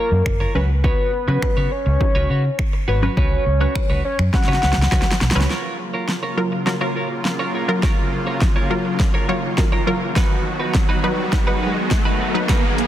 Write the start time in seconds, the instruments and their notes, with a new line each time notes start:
Already playing: synth pluck F#3 F4 A#4, clean electric guitar F4 A#4 C#5, soft synth lead A#4
0.11 fingered electric bass F#2, muted clean electric guitar stroke
0.26 fingered electric bass F#1, finger snap, muted clean electric guitar stroke, kick
0.40 clean electric guitar F4 A#4 C#5
0.55 fingered electric bass C#2, synth pluck F#3 C#4 B4, clean electric guitar F#4 B4 C#5
0.69 muted clean electric guitar stroke
0.84 clean electric guitar F#4 B4 C#5, soft synth lead B4, kick
1.13 muted clean electric guitar stroke
1.28 fingered electric bass C#3, synth pluck F#3 C#4 B4, clean electric guitar F#4 B4 C#5
1.42 synth pluck F#3 C#4 B4, finger snap, muted fingered electric bass stroke, kick
1.57 fingered electric bass C#3, clean electric guitar F#4 B4 C#5
1.71 soft synth lead C#5, muted clean electric guitar stroke
1.86 fingered electric bass C#2, muted clean electric guitar stroke
2.00 synth pluck F#3 C#4 D#4, muted clean electric guitar stroke, kick
2.15 fingered electric bass C#2, clean electric guitar F#4 B4 C#5
2.30 fingered electric bass C#3, clean electric guitar F#4 B4 C#5
2.59 finger snap, muted clean electric guitar stroke, kick
2.73 muted clean electric guitar stroke
2.88 fingered electric bass G#1, clean electric guitar F#4 B4 C#5, soft synth lead B4
3.02 synth pluck F#3 C#4 B4, clean electric guitar F#4 B4 C#5
3.17 fingered electric bass C#2, clean electric guitar F#4 B4 C#5, soft synth lead C#5, kick
3.46 fingered electric bass C#2, muted clean electric guitar stroke
3.60 synth pluck F#3 C#4 B4, clean electric guitar F#4 B4 C#5
3.75 synth pluck F#3 C#4 B4, finger snap, muted clean electric guitar stroke, kick
3.90 fingered electric bass C#2, clean electric guitar F#4 B4 C#5
4.04 soft synth lead C#5, muted clean electric guitar stroke
4.19 fingered electric bass F#2, finger snap, muted clean electric guitar stroke
4.33 synth pluck F#3 C#4 B4, soft synth lead F#5, muted clean electric guitar stroke, kick, snare
4.43 snare
4.48 fingered electric bass C#3, clean electric guitar F#4 B4 C#5
4.53 snare
4.62 fingered electric bass C#2, clean electric guitar F#4 B4 C#5, snare
4.73 snare
4.77 fingered electric bass C#2, muted clean electric guitar stroke
4.82 snare
4.91 fingered electric bass C#2, clean electric guitar F#4 B4 C#5, kick, snare
5.02 snare
5.06 muted clean electric guitar stroke
5.11 snare
5.21 fingered electric bass B1, muted clean electric guitar stroke, snare
5.31 snare
5.35 fingered electric bass C#2, synth pluck F#3 C#4 B4, clean electric guitar F#4 B4 C#5
5.41 snare
5.50 supersaw synth C#3 F#3 A#3 F4, clean electric guitar F4 A#4 C#5, snare, riser
5.79 muted clean electric guitar stroke
5.94 clean electric guitar F4 A#4 C#5
6.08 muted clean electric guitar stroke, snare
6.23 clean electric guitar F4 A#4 C#5
6.37 synth pluck F#3 F4 A#4, muted clean electric guitar stroke
6.52 muted clean electric guitar stroke
6.66 synth pluck F#3 F4 A#4, muted clean electric guitar stroke, snare
6.81 synth pluck F#3 F4 A#4, clean electric guitar F4 A#4 C#5
6.96 clean electric guitar F4 A#4 C#5
7.10 muted clean electric guitar stroke
7.25 muted clean electric guitar stroke, snare
7.39 clean electric guitar F4 A#4 C#5
7.54 clean electric guitar F4 A#4 C#5
7.68 synth pluck F#3 F4 A#4, muted clean electric guitar stroke
7.83 clean electric guitar F4 A#4 C#5, kick, snare
8.12 muted clean electric guitar stroke
8.27 clean electric guitar F4 A#4 C#5
8.41 muted clean electric guitar stroke, kick, snare
8.56 clean electric guitar F4 A#4 C#5
8.70 synth pluck F#3 F4 A#4, muted clean electric guitar stroke
8.85 muted clean electric guitar stroke
9.00 muted clean electric guitar stroke, kick, snare
9.14 clean electric guitar F4 A#4 C#5
9.29 synth pluck F#3 F4 C#5, clean electric guitar F4 A#4 C#5
9.43 muted clean electric guitar stroke
9.58 synth pluck F#3 F4 A#4, muted clean electric guitar stroke, kick, snare
9.72 clean electric guitar F4 A#4 C#5
9.87 synth pluck F#3 F4 A#4, clean electric guitar F4 A#4 C#5
10.01 muted clean electric guitar stroke
10.16 supersaw synth D#3 F#3 B3 F#4, clean electric guitar D#4 F#4 B4, kick, snare
10.45 muted clean electric guitar stroke
10.60 clean electric guitar D#4 F#4 B4
10.74 muted clean electric guitar stroke, kick, snare
10.89 clean electric guitar D#4 F#4 B4
11.03 synth pluck F#3 D#4 B4, muted clean electric guitar stroke
11.18 muted clean electric guitar stroke
11.32 synth pluck F#3 D#4 B4, muted clean electric guitar stroke, kick, snare
11.47 synth pluck F#3 D#4 B4, clean electric guitar D#4 F#4 B4
11.62 clean electric guitar D#4 F#4 B4
11.76 muted clean electric guitar stroke
11.91 muted clean electric guitar stroke, kick, snare
12.05 clean electric guitar D#4 F#4 B4
12.20 clean electric guitar D#4 F#4 B4
12.34 synth pluck F#3 D#4 B4, muted clean electric guitar stroke
12.49 clean electric guitar D#4 F#4 B4, supersaw synth G#4, kick, snare, closed hi-hat
12.78 muted clean electric guitar stroke, closed hi-hat